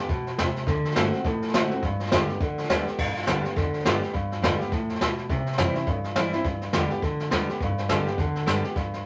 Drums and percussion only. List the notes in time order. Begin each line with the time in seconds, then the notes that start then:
0.09 kick, snare
0.27 snare
0.38 snare, hi-hat pedal
0.56 snare
0.67 kick, snare
0.85 snare
0.91 snare
0.96 snare, hi-hat pedal
1.13 snare
1.24 kick, snare
1.42 snare
1.48 snare
1.54 snare, hi-hat pedal
1.71 snare
1.82 kick, snare
2.00 snare
2.06 snare
2.12 snare, hi-hat pedal
2.29 snare
2.40 kick, snare
2.58 snare
2.64 snare
2.70 snare, hi-hat pedal
2.87 snare
2.99 kick, snare, crash
3.16 snare
3.22 snare
3.27 snare, hi-hat pedal
3.45 snare
3.57 kick, snare
3.73 snare
3.80 snare
3.86 snare, hi-hat pedal
4.03 snare
4.14 kick, snare
4.32 snare
4.44 snare, hi-hat pedal
4.61 snare
4.72 kick, snare
4.89 snare
4.95 snare
5.01 snare, hi-hat pedal
5.18 snare
5.30 kick, snare
5.46 snare
5.52 snare
5.58 snare, hi-hat pedal
5.75 snare
5.86 kick, snare
6.04 snare
6.16 snare, hi-hat pedal
6.33 snare
6.44 kick, snare
6.61 snare
6.73 snare, hi-hat pedal
6.91 snare
7.02 kick, snare
7.20 snare
7.31 snare, hi-hat pedal
7.49 snare
7.60 kick, snare
7.78 snare
7.89 snare, hi-hat pedal
8.07 snare
8.18 kick, snare
8.35 snare
8.47 snare, hi-hat pedal
8.64 snare
8.76 kick, snare
8.93 snare